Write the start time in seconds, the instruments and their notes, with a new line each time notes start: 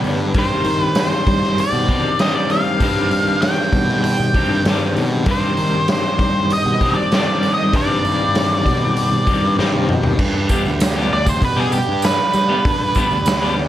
Already playing: clean electric guitar G2 D3 G3 B3 D4 G4, tonewheel organ G3 B3 G4
0.04 picked electric bass G2, open hi-hat
0.34 picked electric bass G2, clean electric guitar G2 D#3 G3 C4 D4 G4, tonewheel organ D#3 C5, kick, open hi-hat
0.39 lead electric guitar C5
0.64 picked electric bass D#3, open hi-hat
0.82 lead electric guitar B4
0.95 snare, open hi-hat
1.00 lead electric guitar C5
1.27 picked electric bass G3, kick, open hi-hat
1.44 snare
1.58 lead electric guitar D5, open hi-hat
1.73 picked electric bass B2
1.89 clean electric guitar G2 D#3 G3 C4 D4 G4, kick, open hi-hat
2.19 clean electric guitar G2 D#3 G3 C4 D4 G4, lead electric guitar D#5, snare, open hi-hat
2.35 lead electric guitar D5
2.50 lead electric guitar F5, open hi-hat
2.80 picked electric bass G2, clean electric guitar G2 D#3 G3 C4 D4 G4, kick, open hi-hat
3.11 picked electric bass G2, open hi-hat
3.42 lead electric guitar G5, snare, open hi-hat
3.73 picked electric bass B2, kick, open hi-hat
3.89 snare
4.04 lead electric guitar G5, open hi-hat
4.20 picked electric bass B2
4.34 clean electric guitar G2 D#3 G3 C4 D4 G4, kick, open hi-hat
4.49 picked electric bass G2
4.65 picked electric bass G2, clean electric guitar G2 D#3 G3 C4 D4 G4, snare, open hi-hat
4.96 picked electric bass B2, open hi-hat
5.26 clean electric guitar G2 D#3 G3 C4 D4 G4, picked electric bass G2, kick, open hi-hat
5.31 lead electric guitar C5
5.57 picked electric bass D#3, open hi-hat
5.88 snare, open hi-hat
5.93 lead electric guitar C5
6.19 picked electric bass G3, kick, open hi-hat
6.50 lead electric guitar D#5, open hi-hat
6.65 picked electric bass B2
6.81 clean electric guitar G2 D#3 G3 C4 D4 G4, kick, open hi-hat
6.94 lead electric guitar D5
7.12 clean electric guitar G2 D#3 G3 C4 D4 G4, lead electric guitar D5, snare, open hi-hat
7.43 open hi-hat
7.54 lead electric guitar D#5
7.73 picked electric bass G2, clean electric guitar G2 D#3 G3 C4 D4 G4, lead electric guitar D5, kick, open hi-hat
8.05 picked electric bass G2, open hi-hat
8.35 snare, open hi-hat
8.65 picked electric bass B2, kick, open hi-hat
8.97 open hi-hat
9.11 picked electric bass B2
9.27 clean electric guitar G2 D#3 G3 C4 D4 G4, kick, open hi-hat
9.43 picked electric bass G2
9.57 clean electric guitar G2 D#3 G3 C4 D4 G4, picked electric bass G2, snare
9.74 high tom
9.89 picked electric bass B2, mid tom
10.03 floor tom
10.19 picked electric bass G2, tonewheel organ G3 D4 G4, kick, crash
10.34 muted clean electric guitar stroke
10.49 clean electric guitar G3 B3 D4 G4, kick, tambourine
10.65 picked electric bass D2, tambourine
10.80 muted clean electric guitar stroke, snare, open hi-hat, tambourine
10.95 clean electric guitar G3 B3 D4 G4, tambourine
11.12 picked electric bass D2, lead electric guitar D5
11.27 lead electric guitar C5, kick, tambourine
11.41 picked electric bass B2, lead electric guitar B4, muted clean electric guitar stroke, kick, open hi-hat, tambourine
11.57 clean electric guitar G3 B3 D4 G4, lead electric guitar G#4
11.72 lead electric guitar G4, tambourine
11.88 picked electric bass G2
12.02 lead electric guitar B4, snare, open hi-hat, tambourine
12.19 muted clean electric guitar stroke
12.33 picked electric bass G3, tambourine
12.49 clean electric guitar G3 B3 D4 G4
12.65 picked electric bass G2, kick, open hi-hat
12.81 muted clean electric guitar stroke
12.95 clean electric guitar G3 B3 D4 G4, kick, tambourine
13.10 picked electric bass D2, tambourine
13.26 muted clean electric guitar stroke, snare, open hi-hat, tambourine
13.42 clean electric guitar G3 B3 D4 G4, tambourine
13.58 picked electric bass D2